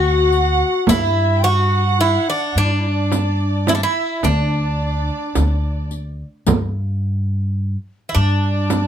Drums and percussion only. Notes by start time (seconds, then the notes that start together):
0.32 riq
0.87 riq, frame drum
2.57 riq
3.12 riq, frame drum
3.67 riq, frame drum
4.23 riq, frame drum
5.35 riq, frame drum
5.91 riq
6.47 riq, frame drum
8.15 riq
8.70 riq, frame drum